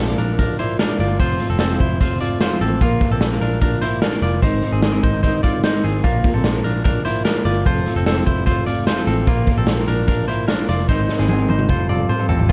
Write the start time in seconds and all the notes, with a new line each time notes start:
Already playing: A#1 C4 A4
0.08 A#3 D4 F4 A#4 D5
0.18 A#1 D4 A#4, closed hi-hat
0.38 D4 F4 A#4 D5, kick, closed hi-hat
0.58 D4 E4 F4 A#4 C5 D5, closed hi-hat
0.79 D4 A#4, snare, closed hi-hat
0.89 A#3 D4 F4 A#4 D5
0.99 G1 F4 D5, closed hi-hat
1.19 F1 F3 A3 C4 F4 C5, kick, closed hi-hat
1.39 A3 C4 F4 C5, closed hi-hat
1.50 F1 C4 A4
1.59 C4 A4, snare, closed hi-hat
1.69 F3 A3 C4 F4 C5
1.80 F1 E4 C5, kick, closed hi-hat
2.00 A3 C4 F4 C5, kick, closed hi-hat
2.20 A3 C4 F4 C5 D5, closed hi-hat
2.41 F4 C5, snare, closed hi-hat
2.50 F3 A3 C4 F4 C5
2.61 A1 C4 A4, closed hi-hat
2.81 A#1 A#3 D4 F4 A#4, kick, closed hi-hat
3.01 A#3 D4 F4 A#4, kick, closed hi-hat
3.11 A#1 C4 A4
3.21 snare, closed hi-hat
3.32 A#3 D4 F4 A#4
3.41 A#1 D4 A#4, closed hi-hat
3.61 A#3 D4 F4 A#4, kick, closed hi-hat
3.81 A#3 D4 E4 F4 A#4 C5, closed hi-hat
4.02 D4 A#4, snare, closed hi-hat
4.12 A#3 D4 F4 A#4
4.22 F1 F4 D5, closed hi-hat
4.42 G#1 G#3 C4 D#4 A#4 C5, kick, closed hi-hat
4.62 G#3 C4 D#4 A#4, closed hi-hat
4.72 G#1 C4 G#4
4.82 C4 G#4, snare, closed hi-hat
4.92 G#3 C4 D#4 A#4
5.03 G#1 D#4 C5, kick, closed hi-hat
5.23 G#3 C4 D#4 A#4 C5, kick, closed hi-hat
5.43 G#3 C4 D#4 F4 A#4 D5, kick, closed hi-hat
5.64 D#4 C5, snare, closed hi-hat
5.73 G#3 C4 D#4 A#4
5.84 G#1 C4 G#4, closed hi-hat
6.03 A#1 A#3 D4 F4 A#4, kick, closed hi-hat
6.24 A#3 D4 F4 A#4, kick, closed hi-hat
6.34 A#1 C4 A4
6.44 snare, closed hi-hat
6.54 A#3 D4 F4 A#4
6.64 A#1 D4 A#4, closed hi-hat
6.84 A#3 D4 F4 A#4, kick, closed hi-hat
7.05 A#3 D4 E4 F4 A#4 C5, closed hi-hat
7.25 D4 A#4, snare, closed hi-hat
7.35 A#3 D4 F4 A#4
7.45 G1 F4 D5, closed hi-hat
7.65 F1 F3 A3 C4 F4 A4 C5, kick, closed hi-hat
7.86 A3 C4 F4 A4, closed hi-hat
7.96 F1 C4 A4
8.06 C4 A4, snare, closed hi-hat
8.16 F3 A3 C4 F4 A4
8.26 F1 E4 C5, kick, closed hi-hat
8.46 A3 C4 F4 A4 C5, kick, closed hi-hat
8.66 A3 C4 F4 A4 D5, closed hi-hat
8.87 F4 C5, snare, closed hi-hat
8.97 F3 A3 C4 F4 A4
9.07 A1 C4 A4, closed hi-hat
9.27 A#1 A#3 D4 F4 A#4, kick, closed hi-hat
9.47 A#3 D4 F4 A#4, kick, closed hi-hat
9.57 A#1 C4 A4
9.67 snare, closed hi-hat
9.77 A#3 D4 F4 A#4
9.88 A#1 D4 A#4, closed hi-hat
10.07 A#3 D4 F4 A#4, kick, closed hi-hat
10.27 A#3 D4 E4 F4 A#4 C5, closed hi-hat
10.48 D4 A#4, snare, closed hi-hat
10.59 A#3 D4 F4 A#4
10.69 F1 F4 D5, closed hi-hat
10.88 G#1 G#3 C4 D#4 A#4 C5, kick, snare
11.08 G#3 C4 D#4 A#4, snare
11.19 G#1 C4 G#4, snare
11.28 C4 G#4, high tom
11.39 G#3 C4 D#4 A#4
11.49 G#1 D#4 C5, high tom
11.59 mid tom
11.69 F1 G3 C4 F4 A4 C5, kick, mid tom
11.89 G3 C4 F4 A4 D5, mid tom
11.99 mid tom
12.09 F4 C5, mid tom
12.19 F3 G3 C4 F4 A4
12.29 A1 C4 A4, floor tom
12.39 floor tom
12.49 F4